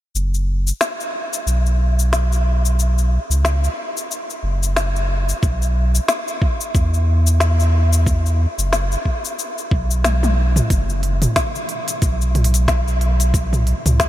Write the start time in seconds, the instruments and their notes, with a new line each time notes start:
0.15 sub bass F#1, cabasa
0.34 cabasa
0.67 cabasa
0.81 snare, cabasa
1.00 cabasa
1.33 cabasa
1.46 sub bass B1, cabasa
1.66 cabasa
1.99 cabasa
2.13 snare, cabasa
2.32 cabasa
2.65 cabasa
2.79 cabasa
2.98 cabasa
3.30 sub bass C#2, cabasa
3.45 snare, cabasa
3.64 cabasa
3.97 cabasa
4.11 cabasa
4.30 cabasa
4.43 sub bass F#1
4.63 cabasa
4.76 snare, cabasa
4.96 cabasa
5.29 cabasa
5.43 sub bass B1, kick, cabasa
5.62 cabasa
5.95 cabasa
6.08 snare, cabasa
6.28 cabasa
6.42 kick
6.61 cabasa
6.75 sub bass E2, kick, cabasa
6.94 cabasa
7.27 cabasa
7.40 snare, cabasa
7.60 cabasa
7.93 cabasa
8.07 kick, cabasa
8.26 cabasa
8.58 sub bass F#1, cabasa
8.73 snare, cabasa
8.92 cabasa
9.05 kick
9.25 cabasa
9.39 cabasa
9.58 cabasa
9.71 sub bass B1, kick
9.91 cabasa
10.04 snare, high tom, cabasa
10.23 high tom, cabasa
10.56 mid tom, cabasa
10.70 sub bass F#1, kick, open hi-hat, cabasa
10.90 cabasa
11.03 open hi-hat
11.22 mid tom, open hi-hat, cabasa
11.36 kick, snare, open hi-hat, cabasa
11.55 cabasa
11.69 open hi-hat
11.88 open hi-hat, cabasa
12.02 sub bass B1, kick, open hi-hat, cabasa
12.22 cabasa
12.35 mid tom, open hi-hat
12.44 open hi-hat
12.54 open hi-hat, cabasa
12.68 kick, snare, open hi-hat, cabasa
12.88 cabasa
13.01 open hi-hat
13.20 open hi-hat, cabasa
13.34 kick, open hi-hat, cabasa
13.53 mid tom, cabasa
13.67 open hi-hat
13.85 sub bass C#2, mid tom, open hi-hat, cabasa
14.00 kick, snare, open hi-hat, cabasa